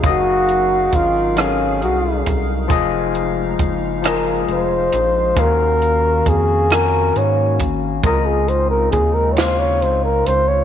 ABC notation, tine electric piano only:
X:1
M:6/8
L:1/8
Q:3/8=45
K:Ebdor
V:1 name="Tine electric piano"
[G,ABef]3 [G,GA=ABf]3 | [F,FAe]3 [F,FAe]3 | [E,DFGf]3 [E,DGa]3 | [D,CFe]3 [D,CFf]3 |]